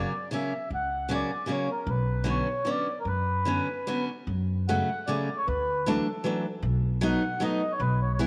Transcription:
Already playing: steel-string acoustic guitar C#3 F#3 A#3 C#4, accordion D5
0.31 steel-string acoustic guitar C#3 F#3 A#3 C#4, accordion E5
0.70 upright bass C#2
0.75 accordion F#5
1.09 steel-string acoustic guitar C#3 F#3 A#3 C#4
1.14 accordion D5
1.46 steel-string acoustic guitar C#3 F#3 A#3 C#4
1.51 accordion C#5
1.72 accordion A#4
1.87 upright bass B1, accordion B4
2.24 steel-string acoustic guitar D3 F#3 B3 C#4
2.30 accordion C#5
2.65 steel-string acoustic guitar D3 F#3 B3 C#4
2.69 accordion D5
3.00 accordion A#4
3.05 upright bass F#2, accordion B4
3.45 steel-string acoustic guitar D3 F#3 B3 C#4
3.87 steel-string acoustic guitar D3 F#3 B3 C#4
4.27 upright bass F#2
4.69 steel-string acoustic guitar C#3 F#3 A3 C#4, accordion F#5
5.07 steel-string acoustic guitar C#3 F#3 A3 C#4, accordion D5
5.37 accordion C#5
5.48 upright bass D2, accordion B4
5.86 steel-string acoustic guitar E3 F#3 A3 D4, accordion A4
6.24 steel-string acoustic guitar E3 F#3 A3 D4
6.63 upright bass B1
7.01 steel-string acoustic guitar F#3 A3 B3 D#4, accordion F#5
7.40 steel-string acoustic guitar F#3 A3 B3 D#4, accordion D#5
7.72 accordion C#5
7.80 upright bass B1, accordion B4
8.02 accordion C#5
8.13 accordion C#5
8.19 steel-string acoustic guitar E3 G#3 B3 E4, accordion B4

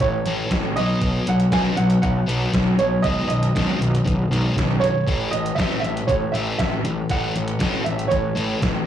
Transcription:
0.00 picked electric bass A1, distorted electric guitar A2 E3, upright piano C#5, kick, closed hi-hat
0.26 picked electric bass A1, distorted electric guitar A2 E3 A3, closed hi-hat
0.51 picked electric bass A1, distorted electric guitar A2 E3, kick, snare, closed hi-hat
0.76 picked electric bass B1, distorted electric guitar B2 F#3 B3, upright piano D#5, closed hi-hat
1.01 picked electric bass B1, distorted electric guitar B2 F#3 B3, kick, closed hi-hat
1.27 picked electric bass B1, distorted electric guitar B2 F#3, upright piano F#5, closed hi-hat
1.40 closed hi-hat
1.52 picked electric bass B1, distorted electric guitar B2 F#3 B3, upright piano G#5, kick, snare, closed hi-hat
1.77 picked electric bass B1, distorted electric guitar B2 F#3, upright piano F#5, closed hi-hat
1.90 closed hi-hat
2.02 picked electric bass B1, distorted electric guitar B2 F#3, upright piano F#5, kick, closed hi-hat
2.26 picked electric bass B1, distorted electric guitar B2 F#3 B3, closed hi-hat
2.53 picked electric bass B1, distorted electric guitar B2 F#3, kick, snare, closed hi-hat
2.79 picked electric bass B1, distorted electric guitar B2 F#3, upright piano C#5, closed hi-hat
3.02 picked electric bass B1, distorted electric guitar B2 D#3 G#3, upright piano D#5, kick, closed hi-hat
3.28 picked electric bass B1, distorted electric guitar B2 D#3, upright piano D#5, closed hi-hat
3.43 closed hi-hat
3.55 picked electric bass B1, distorted electric guitar B2 D#3 G#3, kick, snare, closed hi-hat
3.79 picked electric bass B1, distorted electric guitar B2 D#3, closed hi-hat
3.95 closed hi-hat
4.05 picked electric bass B1, distorted electric guitar B2 D#3, kick, closed hi-hat
4.30 picked electric bass B1, distorted electric guitar B2 D#3 G#3, closed hi-hat
4.56 picked electric bass B1, distorted electric guitar B2 D#3, kick, snare, closed hi-hat
4.80 distorted electric guitar B2 D#3, upright piano C#5, closed hi-hat
5.07 picked electric bass A1, distorted electric guitar A2 E3 A3, kick, closed hi-hat
5.31 picked electric bass A1, distorted electric guitar A2 E3, upright piano D#5, closed hi-hat
5.46 closed hi-hat
5.55 picked electric bass A1, distorted electric guitar A2 E3 A3, upright piano E5, kick, closed hi-hat
5.60 snare
5.80 picked electric bass A1, distorted electric guitar A2 E3, upright piano E5
5.84 closed hi-hat
5.97 closed hi-hat
6.07 picked electric bass A1, distorted electric guitar A2 E3, upright piano C#5, kick, closed hi-hat
6.32 picked electric bass A1, distorted electric guitar A2 E3 A3, upright piano E5, closed hi-hat
6.58 picked electric bass A1, distorted electric guitar A2 E3, upright piano E5, kick, snare, closed hi-hat
6.84 picked electric bass A1, distorted electric guitar A2 E3, closed hi-hat
7.09 picked electric bass A1, distorted electric guitar A2 E3 A3, upright piano F#5, kick, closed hi-hat
7.35 picked electric bass A1, distorted electric guitar A2 E3, closed hi-hat
7.48 closed hi-hat
7.59 picked electric bass A1, distorted electric guitar A2 E3 A3, kick, snare, closed hi-hat
7.84 picked electric bass A1, distorted electric guitar A2 E3, upright piano E5, closed hi-hat
7.99 closed hi-hat
8.08 picked electric bass A1, distorted electric guitar A2 E3, upright piano C#5, kick, closed hi-hat
8.35 picked electric bass A1, distorted electric guitar A2 E3 A3, closed hi-hat
8.61 picked electric bass A1, distorted electric guitar A2 E3, kick, snare, closed hi-hat

